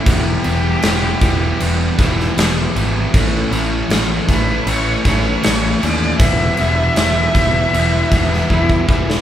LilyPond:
<<
  \new Staff \with { instrumentName = "Cello" } { \time 4/4 \key e \dorian \tempo 4 = 78 g'2. r4 | r4. b'8 cis''8 cis''4 d''8 | e''2. e'8 e8 | }
  \new Staff \with { instrumentName = "Distorted electric guitar" } { \time 4/4 \key e \dorian <e g b e'>8 <e g b e'>16 <g b e'>16 <e g b e'>16 <g b e'>16 <e g b e'>16 <g b e'>8. <e g b e'>16 <g b e'>16 <e g b e'>8 <e g b e'>16 <g b e'>16 | <a, e a cis' e'>8 <e a cis' e'>16 <a cis' e'>16 <a, e a cis' e'>16 <a cis' e'>16 <e a cis' e'>16 <a cis' e'>8. <e a cis' e'>16 <a cis' e'>16 <a, e a cis' e'>8 <e a cis' e'>16 <a cis' e'>16 | <e g b e'>8 <e g b e'>16 <g b e'>16 <e g b e'>16 <g b e'>16 <e g b e'>16 <g b e'>8. <e g b e'>16 <g b e'>16 <e g b e'>8 <e g b e'>16 <g b e'>16 | }
  \new Staff \with { instrumentName = "Overdriven electric guitar" } { \clef bass \time 4/4 \key e \dorian <e, b, e>8 <e, b, e>8 <e, b, e>8 <e, b, e>8 <e, b, e>8 <e, b, e>8 <e, b, e>8 <e, b, e>8 | <a, e a>8 <a, e a>8 <a, e a>8 <a, e a>8 <a, e a>8 <a, e a>8 <a, e a>8 <a, e a>8 | <e, b, e>8 <e, b, e>8 <e, b, e>8 <e, b, e>8 <e, b, e>8 <e, b, e>8 <e, b, e>8 <e, b, e>8 | }
  \new Staff \with { instrumentName = "Picked electric bass" } { \clef bass \time 4/4 \key e \dorian e,,8 e,,8 e,,8 e,,8 e,,8 e,,8 e,,8 gis,,8 | a,,8 a,,8 a,,8 a,,8 a,,8 a,,8 a,,8 dis,8 | e,,8 e,,8 e,,8 e,,8 e,,8 e,,8 e,,8 e,,8 | }
  \new DrumStaff \with { instrumentName = "Drums" } \drummode { \time 4/4 <cymc bd>8 cymc8 <cymc sn>8 <cymc bd>8 cymc8 <cymc bd sn>16 sn16 <cymc sn>8 cymc8 | <cymc bd>8 cymc8 <cymc sn>8 <cymc bd>8 cymc8 <cymc bd sn>8 <cymc sn>8 cymc8 | <cymc bd>8 cymc8 <cymc sn>8 <cymc bd>8 cymc8 <cymc bd sn>16 sn16 bd16 bd16 bd16 sn16 | }
>>